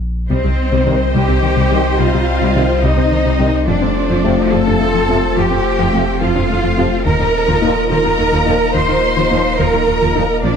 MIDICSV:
0, 0, Header, 1, 11, 480
1, 0, Start_track
1, 0, Tempo, 563380
1, 255, Time_signature, 6, 3, 24, 8
1, 9001, End_track
2, 0, Start_track
2, 0, Title_t, "Violin section"
2, 0, Program_c, 0, 48
2, 256, Note_on_c, 0, 72, 68
2, 941, Note_off_c, 0, 72, 0
2, 975, Note_on_c, 0, 79, 74
2, 1680, Note_off_c, 0, 79, 0
2, 1699, Note_on_c, 0, 77, 75
2, 2417, Note_off_c, 0, 77, 0
2, 2419, Note_on_c, 0, 75, 75
2, 3137, Note_off_c, 0, 75, 0
2, 3137, Note_on_c, 0, 74, 69
2, 3841, Note_off_c, 0, 74, 0
2, 3854, Note_on_c, 0, 81, 72
2, 4574, Note_off_c, 0, 81, 0
2, 4578, Note_on_c, 0, 79, 80
2, 5296, Note_off_c, 0, 79, 0
2, 5303, Note_on_c, 0, 77, 75
2, 6015, Note_on_c, 0, 82, 79
2, 6019, Note_off_c, 0, 77, 0
2, 6721, Note_off_c, 0, 82, 0
2, 6733, Note_on_c, 0, 82, 86
2, 7439, Note_off_c, 0, 82, 0
2, 7463, Note_on_c, 0, 84, 83
2, 8176, Note_on_c, 0, 82, 83
2, 8179, Note_off_c, 0, 84, 0
2, 8891, Note_on_c, 0, 74, 68
2, 8895, Note_off_c, 0, 82, 0
2, 9001, Note_off_c, 0, 74, 0
2, 9001, End_track
3, 0, Start_track
3, 0, Title_t, "Violin section"
3, 0, Program_c, 1, 48
3, 267, Note_on_c, 1, 75, 61
3, 3107, Note_off_c, 1, 75, 0
3, 3142, Note_on_c, 1, 72, 54
3, 5984, Note_off_c, 1, 72, 0
3, 6019, Note_on_c, 1, 75, 55
3, 8863, Note_off_c, 1, 75, 0
3, 8895, Note_on_c, 1, 74, 55
3, 9001, Note_off_c, 1, 74, 0
3, 9001, End_track
4, 0, Start_track
4, 0, Title_t, "Cello section"
4, 0, Program_c, 2, 48
4, 258, Note_on_c, 2, 60, 77
4, 942, Note_off_c, 2, 60, 0
4, 976, Note_on_c, 2, 67, 76
4, 1696, Note_off_c, 2, 67, 0
4, 1697, Note_on_c, 2, 65, 71
4, 2416, Note_off_c, 2, 65, 0
4, 2418, Note_on_c, 2, 63, 75
4, 3134, Note_on_c, 2, 62, 72
4, 3136, Note_off_c, 2, 63, 0
4, 3840, Note_off_c, 2, 62, 0
4, 3854, Note_on_c, 2, 69, 84
4, 4569, Note_on_c, 2, 67, 80
4, 4574, Note_off_c, 2, 69, 0
4, 5292, Note_off_c, 2, 67, 0
4, 5295, Note_on_c, 2, 65, 84
4, 6000, Note_off_c, 2, 65, 0
4, 6015, Note_on_c, 2, 70, 89
4, 6721, Note_off_c, 2, 70, 0
4, 6733, Note_on_c, 2, 70, 87
4, 7439, Note_off_c, 2, 70, 0
4, 7456, Note_on_c, 2, 72, 87
4, 8161, Note_off_c, 2, 72, 0
4, 8172, Note_on_c, 2, 70, 80
4, 8893, Note_off_c, 2, 70, 0
4, 8896, Note_on_c, 2, 62, 75
4, 9001, Note_off_c, 2, 62, 0
4, 9001, End_track
5, 0, Start_track
5, 0, Title_t, "Analog synth pad"
5, 0, Program_c, 3, 89
5, 250, Note_on_c, 3, 60, 70
5, 252, Note_on_c, 3, 63, 70
5, 252, Note_on_c, 3, 72, 73
5, 255, Note_on_c, 3, 55, 72
5, 3098, Note_off_c, 3, 60, 0
5, 3099, Note_off_c, 3, 63, 0
5, 3099, Note_off_c, 3, 72, 0
5, 3101, Note_off_c, 3, 55, 0
5, 3131, Note_on_c, 3, 60, 66
5, 3131, Note_on_c, 3, 65, 74
5, 3133, Note_on_c, 3, 57, 68
5, 3134, Note_on_c, 3, 72, 66
5, 5979, Note_off_c, 3, 60, 0
5, 5980, Note_off_c, 3, 72, 0
5, 5998, Note_off_c, 3, 65, 0
5, 6008, Note_on_c, 3, 65, 66
5, 6009, Note_on_c, 3, 58, 69
5, 6012, Note_on_c, 3, 63, 66
5, 6013, Note_on_c, 3, 70, 67
5, 6014, Note_off_c, 3, 57, 0
5, 8857, Note_off_c, 3, 65, 0
5, 8879, Note_off_c, 3, 58, 0
5, 8881, Note_off_c, 3, 70, 0
5, 8887, Note_on_c, 3, 65, 66
5, 8888, Note_on_c, 3, 62, 65
5, 8889, Note_on_c, 3, 58, 70
5, 8891, Note_on_c, 3, 70, 65
5, 8894, Note_off_c, 3, 63, 0
5, 9001, Note_off_c, 3, 58, 0
5, 9001, Note_off_c, 3, 62, 0
5, 9001, Note_off_c, 3, 65, 0
5, 9001, Note_off_c, 3, 70, 0
5, 9001, End_track
6, 0, Start_track
6, 0, Title_t, "French horn section"
6, 0, Program_c, 4, 60
6, 726, Note_on_c, 4, 55, 61
6, 727, Note_on_c, 4, 60, 57
6, 813, Note_off_c, 4, 55, 0
6, 813, Note_off_c, 4, 60, 0
6, 1450, Note_on_c, 4, 60, 53
6, 1451, Note_on_c, 4, 55, 55
6, 1536, Note_off_c, 4, 55, 0
6, 1536, Note_off_c, 4, 60, 0
6, 2175, Note_on_c, 4, 55, 53
6, 2178, Note_on_c, 4, 60, 56
6, 2259, Note_off_c, 4, 55, 0
6, 2261, Note_off_c, 4, 60, 0
6, 2891, Note_on_c, 4, 55, 57
6, 2892, Note_on_c, 4, 60, 53
6, 2976, Note_off_c, 4, 55, 0
6, 2977, Note_off_c, 4, 60, 0
6, 3616, Note_on_c, 4, 57, 60
6, 3618, Note_on_c, 4, 60, 56
6, 3699, Note_off_c, 4, 57, 0
6, 3701, Note_off_c, 4, 60, 0
6, 4341, Note_on_c, 4, 60, 58
6, 4344, Note_on_c, 4, 57, 54
6, 4422, Note_off_c, 4, 60, 0
6, 4425, Note_off_c, 4, 57, 0
6, 5056, Note_on_c, 4, 60, 62
6, 5062, Note_on_c, 4, 57, 58
6, 5139, Note_off_c, 4, 60, 0
6, 5143, Note_off_c, 4, 57, 0
6, 5773, Note_on_c, 4, 57, 61
6, 5776, Note_on_c, 4, 60, 57
6, 5857, Note_off_c, 4, 57, 0
6, 5859, Note_off_c, 4, 60, 0
6, 6480, Note_on_c, 4, 63, 60
6, 6487, Note_on_c, 4, 58, 61
6, 6569, Note_off_c, 4, 63, 0
6, 6573, Note_off_c, 4, 58, 0
6, 7200, Note_on_c, 4, 58, 64
6, 7202, Note_on_c, 4, 63, 56
6, 7289, Note_off_c, 4, 58, 0
6, 7290, Note_off_c, 4, 63, 0
6, 7925, Note_on_c, 4, 58, 61
6, 7926, Note_on_c, 4, 63, 56
6, 8012, Note_off_c, 4, 58, 0
6, 8013, Note_off_c, 4, 63, 0
6, 8649, Note_on_c, 4, 58, 56
6, 8653, Note_on_c, 4, 63, 63
6, 8735, Note_off_c, 4, 58, 0
6, 8737, Note_off_c, 4, 63, 0
6, 9001, End_track
7, 0, Start_track
7, 0, Title_t, "Synth arpeggio sound"
7, 0, Program_c, 5, 84
7, 256, Note_on_c, 5, 48, 81
7, 328, Note_off_c, 5, 48, 0
7, 376, Note_on_c, 5, 55, 61
7, 448, Note_off_c, 5, 55, 0
7, 614, Note_on_c, 5, 48, 90
7, 687, Note_off_c, 5, 48, 0
7, 735, Note_on_c, 5, 51, 55
7, 807, Note_off_c, 5, 51, 0
7, 979, Note_on_c, 5, 48, 79
7, 1049, Note_off_c, 5, 48, 0
7, 1096, Note_on_c, 5, 60, 61
7, 1167, Note_off_c, 5, 60, 0
7, 1214, Note_on_c, 5, 51, 57
7, 1287, Note_off_c, 5, 51, 0
7, 1335, Note_on_c, 5, 48, 82
7, 1407, Note_off_c, 5, 48, 0
7, 1461, Note_on_c, 5, 55, 59
7, 1531, Note_off_c, 5, 55, 0
7, 1700, Note_on_c, 5, 48, 78
7, 1770, Note_off_c, 5, 48, 0
7, 1823, Note_on_c, 5, 55, 60
7, 1892, Note_off_c, 5, 55, 0
7, 2055, Note_on_c, 5, 48, 92
7, 2127, Note_off_c, 5, 48, 0
7, 2177, Note_on_c, 5, 51, 59
7, 2249, Note_off_c, 5, 51, 0
7, 2415, Note_on_c, 5, 48, 85
7, 2487, Note_off_c, 5, 48, 0
7, 2532, Note_on_c, 5, 60, 61
7, 2605, Note_off_c, 5, 60, 0
7, 2654, Note_on_c, 5, 51, 53
7, 2726, Note_off_c, 5, 51, 0
7, 2774, Note_on_c, 5, 48, 87
7, 2846, Note_off_c, 5, 48, 0
7, 2890, Note_on_c, 5, 55, 62
7, 2964, Note_off_c, 5, 55, 0
7, 3130, Note_on_c, 5, 53, 80
7, 3203, Note_off_c, 5, 53, 0
7, 3253, Note_on_c, 5, 60, 64
7, 3325, Note_off_c, 5, 60, 0
7, 3492, Note_on_c, 5, 53, 86
7, 3565, Note_off_c, 5, 53, 0
7, 3615, Note_on_c, 5, 57, 57
7, 3687, Note_off_c, 5, 57, 0
7, 3857, Note_on_c, 5, 53, 81
7, 3929, Note_off_c, 5, 53, 0
7, 3979, Note_on_c, 5, 62, 60
7, 4050, Note_off_c, 5, 62, 0
7, 4095, Note_on_c, 5, 57, 55
7, 4167, Note_off_c, 5, 57, 0
7, 4213, Note_on_c, 5, 53, 85
7, 4285, Note_off_c, 5, 53, 0
7, 4335, Note_on_c, 5, 60, 60
7, 4407, Note_off_c, 5, 60, 0
7, 4572, Note_on_c, 5, 53, 86
7, 4645, Note_off_c, 5, 53, 0
7, 4693, Note_on_c, 5, 60, 58
7, 4766, Note_off_c, 5, 60, 0
7, 4931, Note_on_c, 5, 53, 87
7, 5004, Note_off_c, 5, 53, 0
7, 5051, Note_on_c, 5, 57, 53
7, 5124, Note_off_c, 5, 57, 0
7, 5291, Note_on_c, 5, 53, 77
7, 5364, Note_off_c, 5, 53, 0
7, 5414, Note_on_c, 5, 62, 56
7, 5486, Note_off_c, 5, 62, 0
7, 5534, Note_on_c, 5, 57, 56
7, 5606, Note_off_c, 5, 57, 0
7, 5656, Note_on_c, 5, 53, 87
7, 5728, Note_off_c, 5, 53, 0
7, 5773, Note_on_c, 5, 60, 56
7, 5845, Note_off_c, 5, 60, 0
7, 6010, Note_on_c, 5, 51, 79
7, 6083, Note_off_c, 5, 51, 0
7, 6130, Note_on_c, 5, 63, 60
7, 6203, Note_off_c, 5, 63, 0
7, 6372, Note_on_c, 5, 51, 85
7, 6445, Note_off_c, 5, 51, 0
7, 6491, Note_on_c, 5, 58, 58
7, 6564, Note_off_c, 5, 58, 0
7, 6730, Note_on_c, 5, 51, 82
7, 6803, Note_off_c, 5, 51, 0
7, 6850, Note_on_c, 5, 65, 55
7, 6924, Note_off_c, 5, 65, 0
7, 6970, Note_on_c, 5, 58, 53
7, 7043, Note_off_c, 5, 58, 0
7, 7088, Note_on_c, 5, 51, 80
7, 7162, Note_off_c, 5, 51, 0
7, 7209, Note_on_c, 5, 63, 58
7, 7283, Note_off_c, 5, 63, 0
7, 7448, Note_on_c, 5, 51, 81
7, 7522, Note_off_c, 5, 51, 0
7, 7569, Note_on_c, 5, 63, 55
7, 7643, Note_off_c, 5, 63, 0
7, 7810, Note_on_c, 5, 51, 87
7, 7884, Note_off_c, 5, 51, 0
7, 7931, Note_on_c, 5, 58, 55
7, 8004, Note_off_c, 5, 58, 0
7, 8172, Note_on_c, 5, 51, 73
7, 8245, Note_off_c, 5, 51, 0
7, 8290, Note_on_c, 5, 65, 62
7, 8363, Note_off_c, 5, 65, 0
7, 8414, Note_on_c, 5, 58, 55
7, 8486, Note_off_c, 5, 58, 0
7, 8536, Note_on_c, 5, 51, 76
7, 8607, Note_off_c, 5, 51, 0
7, 8653, Note_on_c, 5, 63, 54
7, 8726, Note_off_c, 5, 63, 0
7, 8889, Note_on_c, 5, 58, 79
7, 8963, Note_off_c, 5, 58, 0
7, 9001, End_track
8, 0, Start_track
8, 0, Title_t, "Viola section"
8, 0, Program_c, 6, 48
8, 257, Note_on_c, 6, 55, 63
8, 257, Note_on_c, 6, 72, 57
8, 304, Note_off_c, 6, 55, 0
8, 376, Note_on_c, 6, 48, 43
8, 424, Note_off_c, 6, 48, 0
8, 620, Note_on_c, 6, 55, 69
8, 667, Note_off_c, 6, 55, 0
8, 742, Note_on_c, 6, 48, 41
8, 789, Note_off_c, 6, 48, 0
8, 983, Note_on_c, 6, 55, 65
8, 1029, Note_off_c, 6, 55, 0
8, 1102, Note_on_c, 6, 48, 56
8, 1149, Note_off_c, 6, 48, 0
8, 1230, Note_on_c, 6, 51, 47
8, 1275, Note_off_c, 6, 51, 0
8, 1341, Note_on_c, 6, 55, 56
8, 1387, Note_off_c, 6, 55, 0
8, 1456, Note_on_c, 6, 48, 47
8, 1504, Note_off_c, 6, 48, 0
8, 1696, Note_on_c, 6, 55, 59
8, 1744, Note_off_c, 6, 55, 0
8, 1818, Note_on_c, 6, 48, 48
8, 1866, Note_off_c, 6, 48, 0
8, 2062, Note_on_c, 6, 55, 64
8, 2109, Note_off_c, 6, 55, 0
8, 2179, Note_on_c, 6, 48, 46
8, 2226, Note_off_c, 6, 48, 0
8, 2418, Note_on_c, 6, 55, 68
8, 2465, Note_off_c, 6, 55, 0
8, 2534, Note_on_c, 6, 48, 50
8, 2582, Note_off_c, 6, 48, 0
8, 2656, Note_on_c, 6, 51, 44
8, 2703, Note_off_c, 6, 51, 0
8, 2778, Note_on_c, 6, 55, 57
8, 2825, Note_off_c, 6, 55, 0
8, 2901, Note_on_c, 6, 48, 45
8, 2948, Note_off_c, 6, 48, 0
8, 3102, Note_off_c, 6, 72, 0
8, 3133, Note_on_c, 6, 69, 56
8, 3137, Note_on_c, 6, 53, 63
8, 3185, Note_off_c, 6, 53, 0
8, 3257, Note_on_c, 6, 48, 46
8, 3304, Note_off_c, 6, 48, 0
8, 3501, Note_on_c, 6, 53, 65
8, 3548, Note_off_c, 6, 53, 0
8, 3628, Note_on_c, 6, 48, 45
8, 3673, Note_off_c, 6, 48, 0
8, 3859, Note_on_c, 6, 53, 66
8, 3906, Note_off_c, 6, 53, 0
8, 3980, Note_on_c, 6, 48, 50
8, 4027, Note_off_c, 6, 48, 0
8, 4101, Note_on_c, 6, 50, 48
8, 4148, Note_off_c, 6, 50, 0
8, 4221, Note_on_c, 6, 53, 60
8, 4267, Note_off_c, 6, 53, 0
8, 4342, Note_on_c, 6, 48, 51
8, 4388, Note_off_c, 6, 48, 0
8, 4574, Note_on_c, 6, 53, 63
8, 4622, Note_off_c, 6, 53, 0
8, 4697, Note_on_c, 6, 48, 49
8, 4744, Note_off_c, 6, 48, 0
8, 4938, Note_on_c, 6, 53, 60
8, 4985, Note_off_c, 6, 53, 0
8, 5064, Note_on_c, 6, 48, 41
8, 5110, Note_off_c, 6, 48, 0
8, 5299, Note_on_c, 6, 53, 72
8, 5346, Note_off_c, 6, 53, 0
8, 5416, Note_on_c, 6, 48, 54
8, 5464, Note_off_c, 6, 48, 0
8, 5541, Note_on_c, 6, 50, 51
8, 5588, Note_off_c, 6, 50, 0
8, 5654, Note_on_c, 6, 53, 61
8, 5702, Note_off_c, 6, 53, 0
8, 5773, Note_on_c, 6, 48, 52
8, 5822, Note_off_c, 6, 48, 0
8, 6014, Note_off_c, 6, 69, 0
8, 6017, Note_on_c, 6, 53, 61
8, 6017, Note_on_c, 6, 70, 60
8, 6064, Note_off_c, 6, 53, 0
8, 6141, Note_on_c, 6, 51, 49
8, 6188, Note_off_c, 6, 51, 0
8, 6374, Note_on_c, 6, 53, 65
8, 6422, Note_off_c, 6, 53, 0
8, 6498, Note_on_c, 6, 51, 52
8, 6546, Note_off_c, 6, 51, 0
8, 6739, Note_on_c, 6, 53, 67
8, 6786, Note_off_c, 6, 53, 0
8, 6856, Note_on_c, 6, 51, 53
8, 6904, Note_off_c, 6, 51, 0
8, 6980, Note_on_c, 6, 51, 52
8, 7027, Note_off_c, 6, 51, 0
8, 7092, Note_on_c, 6, 53, 66
8, 7141, Note_off_c, 6, 53, 0
8, 7218, Note_on_c, 6, 51, 56
8, 7266, Note_off_c, 6, 51, 0
8, 7457, Note_on_c, 6, 53, 65
8, 7505, Note_off_c, 6, 53, 0
8, 7575, Note_on_c, 6, 51, 44
8, 7623, Note_off_c, 6, 51, 0
8, 7819, Note_on_c, 6, 53, 62
8, 7866, Note_off_c, 6, 53, 0
8, 7933, Note_on_c, 6, 51, 48
8, 7982, Note_off_c, 6, 51, 0
8, 8176, Note_on_c, 6, 53, 75
8, 8224, Note_off_c, 6, 53, 0
8, 8298, Note_on_c, 6, 51, 52
8, 8346, Note_off_c, 6, 51, 0
8, 8422, Note_on_c, 6, 51, 57
8, 8468, Note_off_c, 6, 51, 0
8, 8537, Note_on_c, 6, 53, 69
8, 8584, Note_off_c, 6, 53, 0
8, 8655, Note_on_c, 6, 51, 52
8, 8703, Note_off_c, 6, 51, 0
8, 8885, Note_off_c, 6, 70, 0
8, 8894, Note_on_c, 6, 53, 71
8, 8895, Note_on_c, 6, 70, 59
8, 8942, Note_off_c, 6, 53, 0
8, 9001, Note_off_c, 6, 70, 0
8, 9001, End_track
9, 0, Start_track
9, 0, Title_t, "Trombone section"
9, 0, Program_c, 7, 61
9, 737, Note_on_c, 7, 51, 60
9, 739, Note_on_c, 7, 48, 58
9, 820, Note_off_c, 7, 51, 0
9, 821, Note_off_c, 7, 48, 0
9, 1458, Note_on_c, 7, 48, 55
9, 1460, Note_on_c, 7, 51, 57
9, 1540, Note_off_c, 7, 48, 0
9, 1542, Note_off_c, 7, 51, 0
9, 2180, Note_on_c, 7, 48, 56
9, 2184, Note_on_c, 7, 51, 60
9, 2262, Note_off_c, 7, 48, 0
9, 2264, Note_off_c, 7, 51, 0
9, 2894, Note_on_c, 7, 51, 52
9, 2895, Note_on_c, 7, 48, 55
9, 2978, Note_off_c, 7, 48, 0
9, 2978, Note_off_c, 7, 51, 0
9, 3612, Note_on_c, 7, 53, 59
9, 3613, Note_on_c, 7, 48, 57
9, 3696, Note_off_c, 7, 53, 0
9, 3697, Note_off_c, 7, 48, 0
9, 4331, Note_on_c, 7, 48, 56
9, 4334, Note_on_c, 7, 53, 58
9, 4416, Note_off_c, 7, 48, 0
9, 4418, Note_off_c, 7, 53, 0
9, 5047, Note_on_c, 7, 53, 62
9, 5048, Note_on_c, 7, 48, 59
9, 5133, Note_off_c, 7, 53, 0
9, 5134, Note_off_c, 7, 48, 0
9, 5775, Note_on_c, 7, 53, 60
9, 5776, Note_on_c, 7, 48, 60
9, 5859, Note_off_c, 7, 48, 0
9, 5859, Note_off_c, 7, 53, 0
9, 6498, Note_on_c, 7, 46, 62
9, 6501, Note_on_c, 7, 53, 60
9, 6581, Note_off_c, 7, 46, 0
9, 6583, Note_off_c, 7, 53, 0
9, 7220, Note_on_c, 7, 53, 57
9, 7224, Note_on_c, 7, 46, 59
9, 7302, Note_off_c, 7, 53, 0
9, 7304, Note_off_c, 7, 46, 0
9, 7935, Note_on_c, 7, 46, 59
9, 7939, Note_on_c, 7, 53, 65
9, 8019, Note_off_c, 7, 46, 0
9, 8021, Note_off_c, 7, 53, 0
9, 8656, Note_on_c, 7, 53, 62
9, 8658, Note_on_c, 7, 46, 56
9, 8739, Note_off_c, 7, 53, 0
9, 8741, Note_off_c, 7, 46, 0
9, 9001, End_track
10, 0, Start_track
10, 0, Title_t, "Double bass section"
10, 0, Program_c, 8, 48
10, 261, Note_on_c, 8, 36, 66
10, 307, Note_off_c, 8, 36, 0
10, 384, Note_on_c, 8, 36, 47
10, 430, Note_off_c, 8, 36, 0
10, 623, Note_on_c, 8, 36, 65
10, 669, Note_off_c, 8, 36, 0
10, 742, Note_on_c, 8, 36, 48
10, 788, Note_off_c, 8, 36, 0
10, 982, Note_on_c, 8, 36, 70
10, 1028, Note_off_c, 8, 36, 0
10, 1100, Note_on_c, 8, 36, 50
10, 1147, Note_off_c, 8, 36, 0
10, 1216, Note_on_c, 8, 36, 45
10, 1264, Note_off_c, 8, 36, 0
10, 1340, Note_on_c, 8, 36, 67
10, 1387, Note_off_c, 8, 36, 0
10, 1456, Note_on_c, 8, 36, 48
10, 1504, Note_off_c, 8, 36, 0
10, 1700, Note_on_c, 8, 36, 64
10, 1747, Note_off_c, 8, 36, 0
10, 1817, Note_on_c, 8, 36, 45
10, 1865, Note_off_c, 8, 36, 0
10, 2057, Note_on_c, 8, 36, 62
10, 2104, Note_off_c, 8, 36, 0
10, 2181, Note_on_c, 8, 36, 47
10, 2227, Note_off_c, 8, 36, 0
10, 2415, Note_on_c, 8, 36, 68
10, 2463, Note_off_c, 8, 36, 0
10, 2537, Note_on_c, 8, 36, 47
10, 2584, Note_off_c, 8, 36, 0
10, 2659, Note_on_c, 8, 36, 45
10, 2706, Note_off_c, 8, 36, 0
10, 2777, Note_on_c, 8, 36, 62
10, 2825, Note_off_c, 8, 36, 0
10, 2899, Note_on_c, 8, 36, 48
10, 2946, Note_off_c, 8, 36, 0
10, 3138, Note_on_c, 8, 41, 67
10, 3186, Note_off_c, 8, 41, 0
10, 3259, Note_on_c, 8, 41, 47
10, 3307, Note_off_c, 8, 41, 0
10, 3500, Note_on_c, 8, 41, 64
10, 3547, Note_off_c, 8, 41, 0
10, 3623, Note_on_c, 8, 41, 48
10, 3669, Note_off_c, 8, 41, 0
10, 3862, Note_on_c, 8, 41, 59
10, 3909, Note_off_c, 8, 41, 0
10, 3981, Note_on_c, 8, 41, 49
10, 4028, Note_off_c, 8, 41, 0
10, 4100, Note_on_c, 8, 41, 45
10, 4147, Note_off_c, 8, 41, 0
10, 4220, Note_on_c, 8, 41, 74
10, 4267, Note_off_c, 8, 41, 0
10, 4338, Note_on_c, 8, 41, 45
10, 4385, Note_off_c, 8, 41, 0
10, 4578, Note_on_c, 8, 41, 67
10, 4625, Note_off_c, 8, 41, 0
10, 4696, Note_on_c, 8, 41, 48
10, 4744, Note_off_c, 8, 41, 0
10, 4936, Note_on_c, 8, 41, 66
10, 4983, Note_off_c, 8, 41, 0
10, 5056, Note_on_c, 8, 41, 47
10, 5104, Note_off_c, 8, 41, 0
10, 5297, Note_on_c, 8, 41, 67
10, 5345, Note_off_c, 8, 41, 0
10, 5418, Note_on_c, 8, 41, 50
10, 5465, Note_off_c, 8, 41, 0
10, 5541, Note_on_c, 8, 41, 50
10, 5588, Note_off_c, 8, 41, 0
10, 5657, Note_on_c, 8, 41, 68
10, 5705, Note_off_c, 8, 41, 0
10, 5779, Note_on_c, 8, 41, 54
10, 5826, Note_off_c, 8, 41, 0
10, 6020, Note_on_c, 8, 39, 74
10, 6067, Note_off_c, 8, 39, 0
10, 6138, Note_on_c, 8, 39, 48
10, 6186, Note_off_c, 8, 39, 0
10, 6381, Note_on_c, 8, 39, 73
10, 6428, Note_off_c, 8, 39, 0
10, 6501, Note_on_c, 8, 39, 52
10, 6547, Note_off_c, 8, 39, 0
10, 6735, Note_on_c, 8, 39, 69
10, 6783, Note_off_c, 8, 39, 0
10, 6857, Note_on_c, 8, 39, 51
10, 6905, Note_off_c, 8, 39, 0
10, 6980, Note_on_c, 8, 39, 53
10, 7027, Note_off_c, 8, 39, 0
10, 7100, Note_on_c, 8, 39, 72
10, 7147, Note_off_c, 8, 39, 0
10, 7215, Note_on_c, 8, 39, 57
10, 7263, Note_off_c, 8, 39, 0
10, 7455, Note_on_c, 8, 39, 67
10, 7503, Note_off_c, 8, 39, 0
10, 7573, Note_on_c, 8, 39, 53
10, 7621, Note_off_c, 8, 39, 0
10, 7814, Note_on_c, 8, 39, 68
10, 7862, Note_off_c, 8, 39, 0
10, 7935, Note_on_c, 8, 39, 48
10, 7983, Note_off_c, 8, 39, 0
10, 8176, Note_on_c, 8, 39, 67
10, 8224, Note_off_c, 8, 39, 0
10, 8294, Note_on_c, 8, 39, 51
10, 8342, Note_off_c, 8, 39, 0
10, 8419, Note_on_c, 8, 39, 44
10, 8466, Note_off_c, 8, 39, 0
10, 8535, Note_on_c, 8, 39, 71
10, 8583, Note_off_c, 8, 39, 0
10, 8657, Note_on_c, 8, 39, 50
10, 8705, Note_off_c, 8, 39, 0
10, 8892, Note_on_c, 8, 34, 65
10, 8941, Note_off_c, 8, 34, 0
10, 9001, End_track
11, 0, Start_track
11, 0, Title_t, "Sub bass"
11, 0, Program_c, 10, 38
11, 0, Note_on_c, 10, 34, 75
11, 253, Note_off_c, 10, 34, 0
11, 259, Note_on_c, 10, 36, 64
11, 3135, Note_on_c, 10, 29, 64
11, 3148, Note_off_c, 10, 36, 0
11, 6011, Note_on_c, 10, 27, 58
11, 6023, Note_off_c, 10, 29, 0
11, 8895, Note_on_c, 10, 34, 57
11, 8908, Note_off_c, 10, 27, 0
11, 9001, Note_off_c, 10, 34, 0
11, 9001, End_track
0, 0, End_of_file